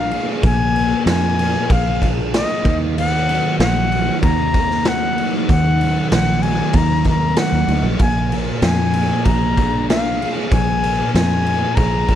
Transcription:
Already playing: A#1 F3 A#3 D4 G#4 F5
0.11 G#4, crash
0.43 A#1 A#2 G#5, kick, crash
0.76 A#3, crash
1.06 F2 F3 G#5, snare, crash
1.39 A#3, crash
1.70 A#1 G#4 F5, kick, crash
2.02 D4, kick, crash
2.34 A#3 D#5, snare, crash
2.65 D#2 D#3, kick, crash
2.97 D#3 F#5, crash
3.29 F#3, crash
3.60 A#1 D#3 F#5, snare, crash
3.92 F#3, crash
4.23 D#2 D#4 A#5, kick, crash
4.54 A#3, kick, crash
4.71 snare
4.85 F#3 F#5, snare, crash
5.18 D#4, crash
5.49 D#2 D#3 F#5, kick, crash
5.81 F#3, crash
6.12 A#1 D#3 F#5, snare, crash
6.42 F#3 G#5, crash
6.73 D#2 D#4 A#5, kick, crash
7.04 A#3, kick, crash
7.09 A#5
7.36 F#3 F#5, snare, crash
7.52 D#2
7.68 D2 D#4, crash
7.83 A#1
7.99 A#1 A#2 G#5, kick, crash
8.32 A#3, crash
8.62 F2 F3 G#5, snare, crash
8.94 A#3, crash
9.25 A#1 G#4 A#5, kick, crash
9.57 D4, kick, crash
9.89 A#3 F5, snare, crash
10.21 G#4, crash
10.52 A#1 A#2 G#5, kick, crash
10.83 A#3, crash
11.14 F2 F3 G#5, snare, crash
11.46 A#3, crash
11.75 A#1 G#4 A#5, kick, crash
12.08 D4, kick, crash

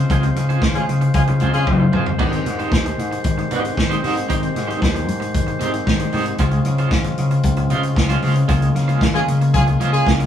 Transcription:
Already playing: C#3 G#3 F4 C5
0.10 C#2 C4 F4 G#4 C5, kick, closed hi-hat
0.23 muted clean electric guitar stroke, closed hi-hat
0.36 C#3, muted clean electric guitar stroke, closed hi-hat
0.49 C4 F4 G#4 C5, closed hi-hat
0.62 G#1, muted clean electric guitar stroke, kick, snare
0.74 C#4 F4 G#4, muted clean electric guitar stroke, closed hi-hat
0.89 C#3, closed hi-hat
1.01 muted clean electric guitar stroke, closed hi-hat
1.14 C#2 C#4 F4 G#4, kick, closed hi-hat
1.27 C#3, muted clean electric guitar stroke, closed hi-hat
1.40 C#2 C4 F4 G#4 C5, closed hi-hat
1.53 C#3 C#4 F4 G#4, muted clean electric guitar stroke, closed hi-hat
1.67 F#1, muted clean electric guitar stroke, kick, high tom
1.80 muted clean electric guitar stroke
1.92 G1 C4 F4 G#4 C5, mid tom
2.06 muted clean electric guitar stroke, floor tom
2.19 G#1 D#3 C4 D#4 G4 C5, kick, crash
2.33 muted clean electric guitar stroke, closed hi-hat
2.46 G#2, muted clean electric guitar stroke, closed hi-hat
2.59 C4 D#4 G4 C5, closed hi-hat
2.72 D#2, muted clean electric guitar stroke, kick, snare
2.85 muted clean electric guitar stroke, closed hi-hat
2.98 G#2, closed hi-hat
3.11 muted clean electric guitar stroke, closed hi-hat
3.24 G#1, kick, closed hi-hat
3.38 muted clean electric guitar stroke, closed hi-hat
3.51 G#2 C4 D#4 G4 C5, closed hi-hat
3.63 muted clean electric guitar stroke, closed hi-hat
3.77 G#1, muted clean electric guitar stroke, kick, snare
3.90 C4 D#4 G4 C5, closed hi-hat
4.02 G#2 C4 D#4 G4 C5, open hi-hat
4.16 muted clean electric guitar stroke, closed hi-hat
4.29 G#1 C4 D#4 G4 C5, kick, closed hi-hat
4.42 muted clean electric guitar stroke, closed hi-hat
4.55 G#2, muted clean electric guitar stroke, snare, closed hi-hat
4.67 C4 D#4 G4 C5, closed hi-hat
4.81 D#2, muted clean electric guitar stroke, kick, snare
4.95 muted clean electric guitar stroke, closed hi-hat
5.08 G#2, closed hi-hat
5.20 muted clean electric guitar stroke, closed hi-hat
5.34 G#1, kick, closed hi-hat
5.47 muted clean electric guitar stroke, closed hi-hat
5.60 G#2 C4 D#4 G4 C5, closed hi-hat
5.73 muted clean electric guitar stroke, closed hi-hat
5.86 G#1, muted clean electric guitar stroke, kick, snare
5.99 muted clean electric guitar stroke, closed hi-hat
6.12 G#2 C4 D#4 G4 C5, open hi-hat
6.26 muted clean electric guitar stroke, closed hi-hat
6.38 C#2 C#3 G#3 C4 C#4 F4 C5, kick, closed hi-hat
6.51 muted clean electric guitar stroke, closed hi-hat
6.65 C#3, muted clean electric guitar stroke, closed hi-hat
6.78 G#3 C#4 F4 C5, closed hi-hat
6.91 G#1, muted clean electric guitar stroke, kick, snare
7.04 muted clean electric guitar stroke, closed hi-hat
7.18 C#3, closed hi-hat
7.31 muted clean electric guitar stroke, closed hi-hat
7.43 C#2, kick, closed hi-hat
7.56 muted clean electric guitar stroke, closed hi-hat
7.70 C#3 G#3 C#4 F4 C5, closed hi-hat
7.83 muted clean electric guitar stroke, closed hi-hat
7.96 C#2, muted clean electric guitar stroke, kick, snare
8.09 G#3 C#4 F4 C5, closed hi-hat
8.22 C#3 G#3 C#4 F4 C5, open hi-hat
8.36 muted clean electric guitar stroke, closed hi-hat
8.48 C#2 G#3 A#3 C#4 F4 C5, kick, closed hi-hat
8.62 muted clean electric guitar stroke, closed hi-hat
8.75 C#3, muted clean electric guitar stroke, snare, closed hi-hat
8.88 G#3 C#4 F4 C5, closed hi-hat
9.01 G#1, muted clean electric guitar stroke, kick, snare
9.14 C#4 F4 G#4, muted clean electric guitar stroke, closed hi-hat
9.28 C#3, closed hi-hat
9.41 muted clean electric guitar stroke, closed hi-hat
9.54 C#2 C#4 F4 G#4, kick, closed hi-hat
9.67 muted clean electric guitar stroke, closed hi-hat
9.80 C#3 G#3 C#4 F4 C5, closed hi-hat
9.93 C#4 F4 G#4, muted clean electric guitar stroke, closed hi-hat
10.07 C#2, muted clean electric guitar stroke, kick, snare
10.20 muted clean electric guitar stroke, closed hi-hat

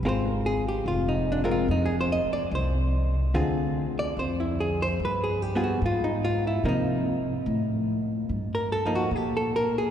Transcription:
0.03 G#1 G#3 C4 F4
0.08 C5
0.28 A#4
0.46 G#4
0.68 G4
0.86 F1 F4
1.09 D#4
1.32 D4
1.44 G#3 C4 F4 A#4
1.51 F4
1.68 F2 D#4
1.86 G#4
2.01 C5
2.12 D#5
2.25 muted upright bass stroke
2.33 D5
2.51 C2 C5
3.34 D2 D3 C4 F4 G#4
3.99 D5
4.17 F2 C5
4.40 E4
4.60 G#4
4.82 C5
4.99 G2
5.05 B4
5.24 G#4
5.42 G4
5.55 G3 B3 F4 G#4
5.64 F#4
5.82 G#2
5.86 F4
6.04 D#4
6.25 F4
6.47 E4
6.63 C3 F3 A#3 D#4
6.69 D#4
7.46 A2
8.29 G2
8.55 A#4
8.72 A4
8.86 F3 A#3 D#4
8.95 F#4
9.11 A#2
9.16 G4
9.37 A4
9.56 A#4
9.78 G#4

